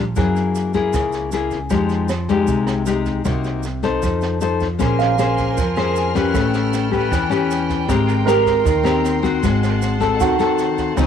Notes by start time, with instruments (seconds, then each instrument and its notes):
Already playing: upright bass A#1, nylon-string guitar A#2
0.16 upright bass F#2, nylon-string guitar F#3 A#3 E4 G#4, kick, cross-stick, snare, shaker
0.36 snare, shaker
0.55 snare, shaker
0.73 nylon-string guitar A#3 E4 G#4, kick, snare, shaker
0.93 upright bass C#2, nylon-string guitar C#3, kick, cross-stick, snare, shaker
1.12 snare, shaker
1.32 nylon-string guitar A#3 E4 G#4, snare, shaker
1.51 kick, snare, shaker
1.70 upright bass F2, nylon-string guitar F3 G#3 D#4 G4, kick, cross-stick, snare, shaker
1.89 snare, shaker
2.09 cross-stick, snare, shaker
2.29 nylon-string guitar G#3 D#4 G4, kick, snare, shaker
2.47 upright bass C2, nylon-string guitar C3, kick, snare, shaker
2.67 cross-stick, snare, shaker
2.86 nylon-string guitar G#3 D#4 G4, snare, shaker
3.06 kick, snare, shaker
3.25 upright bass C2, nylon-string guitar C3 A#3 D#4 F#4, kick, cross-stick, snare, shaker
3.44 snare, shaker
3.63 snare, shaker
3.83 nylon-string guitar D#4 A4 C5, kick, snare, shaker
4.02 upright bass F2, nylon-string guitar F3, kick, cross-stick, snare, shaker
4.21 snare, shaker
4.41 nylon-string guitar D#4 A4 C5, snare, shaker
4.60 kick, snare, shaker
4.79 upright bass A#1, nylon-string guitar A#3 C#4 G#4 C5, string section A#4 G#5 C6 F6, kick, cross-stick, snare, shaker
4.99 grand piano F5, snare, shaker
5.18 nylon-string guitar C#4 G#4 C5, cross-stick, snare, shaker
5.38 kick, snare, shaker
5.57 upright bass F2, nylon-string guitar F3, kick, snare, shaker
5.76 nylon-string guitar C#4 G#4 C5, cross-stick, snare, shaker
5.96 snare, shaker
6.15 nylon-string guitar C#4 G4 B4, kick, snare, shaker
6.34 upright bass A1, nylon-string guitar A3, string section A4 G5 B5, kick, cross-stick, snare, shaker
6.54 snare, shaker
6.73 snare, shaker
6.91 nylon-string guitar C#4 G4 B4, kick, snare, shaker
7.12 upright bass E2, nylon-string guitar E3, kick, cross-stick, snare, shaker
7.29 nylon-string guitar C#4 G4 B4, snare, shaker
7.51 snare, shaker
7.70 kick, snare, shaker
7.88 upright bass G#1, nylon-string guitar G#3 C4 G4 A#4, string section A#5 C6, kick, cross-stick, snare, shaker
8.08 snare, shaker
8.26 nylon-string guitar C4 G4 A#4, grand piano A#4, cross-stick, snare, shaker
8.46 kick, snare, shaker
8.65 upright bass D#2, nylon-string guitar D#3, kick, snare, shaker
8.84 nylon-string guitar C4 G4 A#4, cross-stick, snare, shaker
9.05 snare, shaker
9.23 nylon-string guitar C4 F#4, kick, snare, shaker
9.43 upright bass G#1, nylon-string guitar G#3, string section F#5 A5, kick, cross-stick, snare, shaker
9.63 snare, shaker
9.82 snare, shaker
10.00 nylon-string guitar C4 F#4 A4, kick, snare, shaker
10.20 upright bass D#2, nylon-string guitar D#3, grand piano F#4, kick, cross-stick, snare, shaker
10.39 nylon-string guitar C4 F#4 A4, snare, shaker
10.58 snare, shaker
10.78 kick, snare, shaker
10.97 upright bass C#2, nylon-string guitar C#3 F3 C4 D#4, string section C4 F5 C#6 D#6, kick, cross-stick, snare, shaker